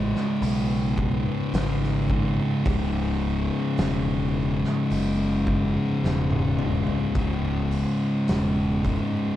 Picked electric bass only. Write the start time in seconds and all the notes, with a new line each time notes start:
Already playing: A1
0.42 B1
1.53 G#1
2.66 C#1
3.79 E1
4.91 F#1
6.04 E1
7.15 C#1
8.29 E1